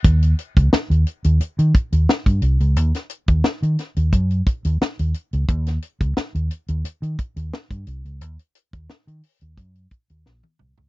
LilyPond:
<<
  \new Staff \with { instrumentName = "Fingered electric bass" } { \clef bass \time 4/4 \key des \lydian \tempo 4 = 88 ees,8 r16 des,16 r16 ees,16 r16 ees,16 r16 ees16 r16 ees,16 r16 g,16 c,16 des,16 | ees,16 r8 ees,16 r16 ees16 r16 ees,16 fis,8 r16 ees,16 r16 ees,16 r16 des,16 | ees,8 r16 des,16 r16 ees,16 r16 ees,16 r16 ees16 r16 ees,16 r16 g,16 c,16 des,16 | ees,16 r8 ees,16 r16 ees16 r16 ees,16 fis,8 r16 ees,16 bes,,16 r16 c,16 des,16 | }
  \new DrumStaff \with { instrumentName = "Drums" } \drummode { \time 4/4 <hh bd>16 hh16 hh16 <hh bd>16 sn16 hh16 hh16 hh16 hh16 hh16 <hh bd>16 hh16 sn16 <hh bd>16 hh16 hh16 | hh16 <hh sn>16 hh16 <hh bd>16 sn16 hh16 <hh sn>16 hh16 <hh bd>16 hh16 <hh bd>16 hh16 sn16 hh16 hh16 hh16 | <hh bd>16 <hh sn>16 hh16 <hh bd>16 sn16 hh16 hh16 hh16 hh16 hh16 <hh bd>16 hh16 sn16 <hh bd>16 hh16 hh16 | hh16 hh16 hh16 <hh bd>16 sn16 hh16 hho16 hh16 <hh bd>16 hh16 <hh bd>16 hh16 sn16 tommh16 toml16 tomfh16 | }
>>